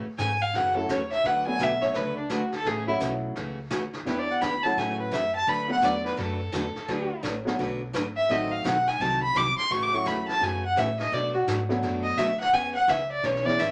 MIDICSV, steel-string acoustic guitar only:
0, 0, Header, 1, 2, 480
1, 0, Start_track
1, 0, Key_signature, 3, "major"
1, 0, Tempo, 352734
1, 1683, Time_signature, 4, 2, 24, 8
1, 18662, End_track
2, 0, Start_track
2, 0, Title_t, "Steel-string acoustic guitar"
2, 0, Program_c, 0, 25
2, 264, Note_on_c, 0, 52, 71
2, 267, Note_on_c, 0, 49, 71
2, 272, Note_on_c, 0, 57, 83
2, 273, Note_on_c, 0, 66, 84
2, 274, Note_on_c, 0, 61, 81
2, 411, Note_off_c, 0, 52, 0
2, 412, Note_off_c, 0, 49, 0
2, 414, Note_off_c, 0, 57, 0
2, 415, Note_off_c, 0, 66, 0
2, 416, Note_off_c, 0, 61, 0
2, 747, Note_on_c, 0, 49, 64
2, 754, Note_on_c, 0, 57, 67
2, 756, Note_on_c, 0, 52, 55
2, 757, Note_on_c, 0, 66, 69
2, 762, Note_on_c, 0, 61, 67
2, 1031, Note_off_c, 0, 49, 0
2, 1035, Note_off_c, 0, 57, 0
2, 1036, Note_off_c, 0, 52, 0
2, 1036, Note_off_c, 0, 66, 0
2, 1039, Note_off_c, 0, 61, 0
2, 1214, Note_on_c, 0, 49, 73
2, 1216, Note_on_c, 0, 52, 67
2, 1221, Note_on_c, 0, 61, 75
2, 1222, Note_on_c, 0, 57, 80
2, 1224, Note_on_c, 0, 66, 77
2, 1366, Note_off_c, 0, 49, 0
2, 1366, Note_off_c, 0, 52, 0
2, 1369, Note_off_c, 0, 61, 0
2, 1370, Note_off_c, 0, 57, 0
2, 1370, Note_off_c, 0, 66, 0
2, 1694, Note_on_c, 0, 50, 58
2, 1702, Note_on_c, 0, 54, 61
2, 1704, Note_on_c, 0, 66, 65
2, 1705, Note_on_c, 0, 62, 60
2, 1708, Note_on_c, 0, 57, 66
2, 1712, Note_on_c, 0, 71, 68
2, 1985, Note_off_c, 0, 50, 0
2, 1989, Note_off_c, 0, 54, 0
2, 1990, Note_off_c, 0, 66, 0
2, 1991, Note_off_c, 0, 62, 0
2, 1992, Note_off_c, 0, 57, 0
2, 1994, Note_off_c, 0, 71, 0
2, 2171, Note_on_c, 0, 50, 71
2, 2171, Note_on_c, 0, 57, 72
2, 2176, Note_on_c, 0, 54, 74
2, 2182, Note_on_c, 0, 62, 79
2, 2182, Note_on_c, 0, 71, 83
2, 2184, Note_on_c, 0, 66, 87
2, 2324, Note_off_c, 0, 50, 0
2, 2324, Note_off_c, 0, 57, 0
2, 2327, Note_off_c, 0, 54, 0
2, 2330, Note_off_c, 0, 62, 0
2, 2330, Note_off_c, 0, 71, 0
2, 2331, Note_off_c, 0, 66, 0
2, 2643, Note_on_c, 0, 50, 57
2, 2648, Note_on_c, 0, 54, 59
2, 2652, Note_on_c, 0, 57, 71
2, 2656, Note_on_c, 0, 71, 67
2, 2659, Note_on_c, 0, 62, 65
2, 2661, Note_on_c, 0, 66, 67
2, 2940, Note_off_c, 0, 50, 0
2, 2942, Note_off_c, 0, 54, 0
2, 2944, Note_off_c, 0, 57, 0
2, 2946, Note_off_c, 0, 71, 0
2, 2948, Note_off_c, 0, 62, 0
2, 2949, Note_off_c, 0, 66, 0
2, 3124, Note_on_c, 0, 50, 75
2, 3127, Note_on_c, 0, 54, 77
2, 3133, Note_on_c, 0, 57, 82
2, 3138, Note_on_c, 0, 62, 84
2, 3140, Note_on_c, 0, 71, 83
2, 3141, Note_on_c, 0, 66, 75
2, 3281, Note_off_c, 0, 50, 0
2, 3282, Note_off_c, 0, 54, 0
2, 3285, Note_off_c, 0, 57, 0
2, 3288, Note_off_c, 0, 62, 0
2, 3289, Note_off_c, 0, 71, 0
2, 3290, Note_off_c, 0, 66, 0
2, 3618, Note_on_c, 0, 52, 57
2, 3622, Note_on_c, 0, 49, 53
2, 3626, Note_on_c, 0, 61, 65
2, 3629, Note_on_c, 0, 57, 64
2, 3629, Note_on_c, 0, 66, 58
2, 3908, Note_off_c, 0, 52, 0
2, 3909, Note_off_c, 0, 49, 0
2, 3911, Note_off_c, 0, 61, 0
2, 3913, Note_off_c, 0, 57, 0
2, 3913, Note_off_c, 0, 66, 0
2, 4083, Note_on_c, 0, 52, 75
2, 4086, Note_on_c, 0, 57, 72
2, 4088, Note_on_c, 0, 49, 73
2, 4091, Note_on_c, 0, 61, 79
2, 4095, Note_on_c, 0, 66, 82
2, 4241, Note_off_c, 0, 52, 0
2, 4242, Note_off_c, 0, 57, 0
2, 4243, Note_off_c, 0, 49, 0
2, 4244, Note_off_c, 0, 61, 0
2, 4247, Note_off_c, 0, 66, 0
2, 4577, Note_on_c, 0, 49, 62
2, 4582, Note_on_c, 0, 52, 65
2, 4585, Note_on_c, 0, 57, 66
2, 4590, Note_on_c, 0, 61, 61
2, 4591, Note_on_c, 0, 66, 63
2, 4867, Note_off_c, 0, 49, 0
2, 4869, Note_off_c, 0, 52, 0
2, 4871, Note_off_c, 0, 57, 0
2, 4874, Note_off_c, 0, 61, 0
2, 4874, Note_off_c, 0, 66, 0
2, 5042, Note_on_c, 0, 52, 77
2, 5042, Note_on_c, 0, 57, 79
2, 5044, Note_on_c, 0, 49, 72
2, 5048, Note_on_c, 0, 61, 87
2, 5050, Note_on_c, 0, 66, 81
2, 5200, Note_off_c, 0, 52, 0
2, 5200, Note_off_c, 0, 57, 0
2, 5201, Note_off_c, 0, 49, 0
2, 5203, Note_off_c, 0, 61, 0
2, 5205, Note_off_c, 0, 66, 0
2, 5530, Note_on_c, 0, 52, 57
2, 5534, Note_on_c, 0, 62, 68
2, 5540, Note_on_c, 0, 59, 58
2, 5542, Note_on_c, 0, 67, 69
2, 5824, Note_off_c, 0, 52, 0
2, 5826, Note_off_c, 0, 62, 0
2, 5829, Note_off_c, 0, 59, 0
2, 5830, Note_off_c, 0, 67, 0
2, 6008, Note_on_c, 0, 52, 80
2, 6008, Note_on_c, 0, 59, 73
2, 6011, Note_on_c, 0, 67, 84
2, 6017, Note_on_c, 0, 62, 86
2, 6163, Note_off_c, 0, 52, 0
2, 6163, Note_off_c, 0, 59, 0
2, 6165, Note_off_c, 0, 67, 0
2, 6168, Note_off_c, 0, 62, 0
2, 6499, Note_on_c, 0, 49, 63
2, 6501, Note_on_c, 0, 52, 56
2, 6503, Note_on_c, 0, 66, 61
2, 6505, Note_on_c, 0, 57, 67
2, 6508, Note_on_c, 0, 61, 64
2, 6788, Note_off_c, 0, 49, 0
2, 6790, Note_off_c, 0, 52, 0
2, 6790, Note_off_c, 0, 66, 0
2, 6791, Note_off_c, 0, 57, 0
2, 6793, Note_off_c, 0, 61, 0
2, 6956, Note_on_c, 0, 49, 69
2, 6960, Note_on_c, 0, 52, 73
2, 6965, Note_on_c, 0, 61, 75
2, 6966, Note_on_c, 0, 57, 67
2, 6967, Note_on_c, 0, 66, 81
2, 7118, Note_off_c, 0, 49, 0
2, 7120, Note_off_c, 0, 52, 0
2, 7122, Note_off_c, 0, 61, 0
2, 7123, Note_off_c, 0, 57, 0
2, 7123, Note_off_c, 0, 66, 0
2, 7443, Note_on_c, 0, 57, 59
2, 7444, Note_on_c, 0, 50, 62
2, 7444, Note_on_c, 0, 54, 55
2, 7452, Note_on_c, 0, 66, 64
2, 7455, Note_on_c, 0, 62, 59
2, 7461, Note_on_c, 0, 71, 69
2, 7741, Note_off_c, 0, 50, 0
2, 7741, Note_off_c, 0, 54, 0
2, 7741, Note_off_c, 0, 57, 0
2, 7745, Note_off_c, 0, 66, 0
2, 7746, Note_off_c, 0, 62, 0
2, 7750, Note_off_c, 0, 71, 0
2, 7910, Note_on_c, 0, 50, 72
2, 7919, Note_on_c, 0, 54, 76
2, 7919, Note_on_c, 0, 57, 72
2, 7919, Note_on_c, 0, 62, 74
2, 7925, Note_on_c, 0, 66, 83
2, 7926, Note_on_c, 0, 71, 78
2, 8074, Note_off_c, 0, 50, 0
2, 8079, Note_off_c, 0, 54, 0
2, 8079, Note_off_c, 0, 57, 0
2, 8079, Note_off_c, 0, 62, 0
2, 8082, Note_off_c, 0, 66, 0
2, 8082, Note_off_c, 0, 71, 0
2, 8393, Note_on_c, 0, 50, 61
2, 8396, Note_on_c, 0, 54, 63
2, 8399, Note_on_c, 0, 57, 58
2, 8401, Note_on_c, 0, 66, 61
2, 8403, Note_on_c, 0, 71, 71
2, 8404, Note_on_c, 0, 62, 67
2, 8696, Note_off_c, 0, 50, 0
2, 8697, Note_off_c, 0, 54, 0
2, 8699, Note_off_c, 0, 57, 0
2, 8699, Note_off_c, 0, 66, 0
2, 8701, Note_off_c, 0, 62, 0
2, 8701, Note_off_c, 0, 71, 0
2, 8874, Note_on_c, 0, 50, 72
2, 8879, Note_on_c, 0, 54, 83
2, 8882, Note_on_c, 0, 57, 80
2, 8884, Note_on_c, 0, 62, 75
2, 8887, Note_on_c, 0, 66, 82
2, 8889, Note_on_c, 0, 71, 80
2, 9037, Note_off_c, 0, 50, 0
2, 9039, Note_off_c, 0, 54, 0
2, 9041, Note_off_c, 0, 57, 0
2, 9042, Note_off_c, 0, 62, 0
2, 9043, Note_off_c, 0, 66, 0
2, 9044, Note_off_c, 0, 71, 0
2, 9365, Note_on_c, 0, 50, 61
2, 9367, Note_on_c, 0, 54, 58
2, 9367, Note_on_c, 0, 57, 56
2, 9368, Note_on_c, 0, 62, 56
2, 9370, Note_on_c, 0, 66, 67
2, 9374, Note_on_c, 0, 71, 64
2, 9662, Note_off_c, 0, 50, 0
2, 9663, Note_off_c, 0, 54, 0
2, 9663, Note_off_c, 0, 57, 0
2, 9663, Note_off_c, 0, 62, 0
2, 9664, Note_off_c, 0, 66, 0
2, 9666, Note_off_c, 0, 71, 0
2, 9834, Note_on_c, 0, 50, 74
2, 9838, Note_on_c, 0, 54, 75
2, 9839, Note_on_c, 0, 62, 80
2, 9847, Note_on_c, 0, 57, 79
2, 9849, Note_on_c, 0, 66, 87
2, 9852, Note_on_c, 0, 71, 78
2, 9997, Note_off_c, 0, 50, 0
2, 9999, Note_off_c, 0, 54, 0
2, 9999, Note_off_c, 0, 62, 0
2, 10003, Note_off_c, 0, 57, 0
2, 10004, Note_off_c, 0, 66, 0
2, 10006, Note_off_c, 0, 71, 0
2, 10324, Note_on_c, 0, 50, 60
2, 10325, Note_on_c, 0, 57, 62
2, 10328, Note_on_c, 0, 54, 63
2, 10332, Note_on_c, 0, 66, 68
2, 10333, Note_on_c, 0, 71, 64
2, 10334, Note_on_c, 0, 62, 68
2, 10621, Note_off_c, 0, 50, 0
2, 10621, Note_off_c, 0, 57, 0
2, 10623, Note_off_c, 0, 54, 0
2, 10626, Note_off_c, 0, 62, 0
2, 10626, Note_off_c, 0, 66, 0
2, 10626, Note_off_c, 0, 71, 0
2, 10795, Note_on_c, 0, 50, 80
2, 10800, Note_on_c, 0, 57, 74
2, 10804, Note_on_c, 0, 62, 83
2, 10805, Note_on_c, 0, 66, 81
2, 10807, Note_on_c, 0, 54, 78
2, 10812, Note_on_c, 0, 71, 76
2, 10958, Note_off_c, 0, 50, 0
2, 10960, Note_off_c, 0, 57, 0
2, 10962, Note_off_c, 0, 62, 0
2, 10963, Note_off_c, 0, 66, 0
2, 10964, Note_off_c, 0, 54, 0
2, 10966, Note_off_c, 0, 71, 0
2, 11286, Note_on_c, 0, 51, 54
2, 11287, Note_on_c, 0, 54, 64
2, 11288, Note_on_c, 0, 60, 63
2, 11293, Note_on_c, 0, 63, 62
2, 11293, Note_on_c, 0, 69, 71
2, 11582, Note_off_c, 0, 51, 0
2, 11583, Note_off_c, 0, 54, 0
2, 11583, Note_off_c, 0, 60, 0
2, 11586, Note_off_c, 0, 63, 0
2, 11586, Note_off_c, 0, 69, 0
2, 11760, Note_on_c, 0, 54, 75
2, 11762, Note_on_c, 0, 51, 76
2, 11771, Note_on_c, 0, 63, 84
2, 11772, Note_on_c, 0, 60, 77
2, 11777, Note_on_c, 0, 69, 84
2, 11920, Note_off_c, 0, 54, 0
2, 11921, Note_off_c, 0, 51, 0
2, 11925, Note_off_c, 0, 63, 0
2, 11926, Note_off_c, 0, 60, 0
2, 11928, Note_off_c, 0, 69, 0
2, 12246, Note_on_c, 0, 51, 63
2, 12253, Note_on_c, 0, 54, 64
2, 12255, Note_on_c, 0, 60, 61
2, 12259, Note_on_c, 0, 63, 67
2, 12268, Note_on_c, 0, 69, 65
2, 12542, Note_off_c, 0, 51, 0
2, 12546, Note_off_c, 0, 54, 0
2, 12547, Note_off_c, 0, 60, 0
2, 12549, Note_off_c, 0, 63, 0
2, 12553, Note_off_c, 0, 69, 0
2, 12722, Note_on_c, 0, 51, 67
2, 12732, Note_on_c, 0, 60, 79
2, 12735, Note_on_c, 0, 63, 84
2, 12736, Note_on_c, 0, 54, 80
2, 12738, Note_on_c, 0, 69, 84
2, 12881, Note_off_c, 0, 51, 0
2, 12886, Note_off_c, 0, 60, 0
2, 12887, Note_off_c, 0, 63, 0
2, 12888, Note_off_c, 0, 54, 0
2, 12889, Note_off_c, 0, 69, 0
2, 13198, Note_on_c, 0, 52, 59
2, 13202, Note_on_c, 0, 49, 56
2, 13203, Note_on_c, 0, 57, 61
2, 13209, Note_on_c, 0, 61, 68
2, 13212, Note_on_c, 0, 66, 67
2, 13498, Note_off_c, 0, 52, 0
2, 13500, Note_off_c, 0, 49, 0
2, 13501, Note_off_c, 0, 57, 0
2, 13504, Note_off_c, 0, 61, 0
2, 13505, Note_off_c, 0, 66, 0
2, 13678, Note_on_c, 0, 49, 80
2, 13684, Note_on_c, 0, 52, 80
2, 13685, Note_on_c, 0, 57, 73
2, 13686, Note_on_c, 0, 66, 77
2, 13691, Note_on_c, 0, 61, 79
2, 13839, Note_off_c, 0, 49, 0
2, 13842, Note_off_c, 0, 52, 0
2, 13842, Note_off_c, 0, 57, 0
2, 13843, Note_off_c, 0, 66, 0
2, 13845, Note_off_c, 0, 61, 0
2, 14159, Note_on_c, 0, 49, 61
2, 14159, Note_on_c, 0, 52, 62
2, 14160, Note_on_c, 0, 57, 72
2, 14168, Note_on_c, 0, 61, 59
2, 14168, Note_on_c, 0, 66, 62
2, 14458, Note_off_c, 0, 49, 0
2, 14458, Note_off_c, 0, 52, 0
2, 14459, Note_off_c, 0, 57, 0
2, 14463, Note_off_c, 0, 61, 0
2, 14463, Note_off_c, 0, 66, 0
2, 14643, Note_on_c, 0, 49, 68
2, 14655, Note_on_c, 0, 52, 76
2, 14657, Note_on_c, 0, 61, 89
2, 14659, Note_on_c, 0, 57, 78
2, 14659, Note_on_c, 0, 66, 77
2, 14801, Note_off_c, 0, 49, 0
2, 14807, Note_off_c, 0, 52, 0
2, 14808, Note_off_c, 0, 61, 0
2, 14809, Note_off_c, 0, 57, 0
2, 14809, Note_off_c, 0, 66, 0
2, 15132, Note_on_c, 0, 47, 60
2, 15133, Note_on_c, 0, 54, 56
2, 15140, Note_on_c, 0, 57, 60
2, 15142, Note_on_c, 0, 62, 61
2, 15145, Note_on_c, 0, 66, 63
2, 15425, Note_off_c, 0, 47, 0
2, 15426, Note_off_c, 0, 54, 0
2, 15429, Note_off_c, 0, 57, 0
2, 15430, Note_off_c, 0, 62, 0
2, 15431, Note_off_c, 0, 66, 0
2, 15617, Note_on_c, 0, 47, 75
2, 15623, Note_on_c, 0, 54, 81
2, 15626, Note_on_c, 0, 57, 73
2, 15628, Note_on_c, 0, 62, 82
2, 15631, Note_on_c, 0, 66, 77
2, 15768, Note_off_c, 0, 47, 0
2, 15771, Note_off_c, 0, 54, 0
2, 15772, Note_off_c, 0, 57, 0
2, 15773, Note_off_c, 0, 62, 0
2, 15775, Note_off_c, 0, 66, 0
2, 16091, Note_on_c, 0, 47, 62
2, 16099, Note_on_c, 0, 57, 59
2, 16102, Note_on_c, 0, 54, 62
2, 16103, Note_on_c, 0, 62, 70
2, 16109, Note_on_c, 0, 66, 75
2, 16384, Note_off_c, 0, 47, 0
2, 16388, Note_off_c, 0, 57, 0
2, 16390, Note_off_c, 0, 54, 0
2, 16390, Note_off_c, 0, 62, 0
2, 16393, Note_off_c, 0, 66, 0
2, 16573, Note_on_c, 0, 47, 76
2, 16578, Note_on_c, 0, 54, 74
2, 16582, Note_on_c, 0, 57, 77
2, 16584, Note_on_c, 0, 66, 86
2, 16586, Note_on_c, 0, 62, 78
2, 16726, Note_off_c, 0, 47, 0
2, 16728, Note_off_c, 0, 54, 0
2, 16730, Note_off_c, 0, 57, 0
2, 16731, Note_off_c, 0, 66, 0
2, 16732, Note_off_c, 0, 62, 0
2, 17056, Note_on_c, 0, 52, 62
2, 17056, Note_on_c, 0, 61, 63
2, 17059, Note_on_c, 0, 59, 63
2, 17063, Note_on_c, 0, 68, 65
2, 17346, Note_off_c, 0, 52, 0
2, 17346, Note_off_c, 0, 61, 0
2, 17348, Note_off_c, 0, 59, 0
2, 17350, Note_off_c, 0, 68, 0
2, 17531, Note_on_c, 0, 52, 68
2, 17539, Note_on_c, 0, 59, 76
2, 17542, Note_on_c, 0, 61, 76
2, 17549, Note_on_c, 0, 68, 86
2, 17685, Note_off_c, 0, 52, 0
2, 17689, Note_off_c, 0, 59, 0
2, 17690, Note_off_c, 0, 61, 0
2, 17694, Note_off_c, 0, 68, 0
2, 18008, Note_on_c, 0, 52, 61
2, 18014, Note_on_c, 0, 59, 66
2, 18019, Note_on_c, 0, 61, 65
2, 18023, Note_on_c, 0, 68, 72
2, 18302, Note_off_c, 0, 52, 0
2, 18305, Note_off_c, 0, 59, 0
2, 18307, Note_off_c, 0, 61, 0
2, 18310, Note_off_c, 0, 68, 0
2, 18491, Note_on_c, 0, 52, 83
2, 18493, Note_on_c, 0, 59, 77
2, 18497, Note_on_c, 0, 61, 80
2, 18506, Note_on_c, 0, 68, 80
2, 18644, Note_off_c, 0, 52, 0
2, 18645, Note_off_c, 0, 59, 0
2, 18647, Note_off_c, 0, 61, 0
2, 18651, Note_off_c, 0, 68, 0
2, 18662, End_track
0, 0, End_of_file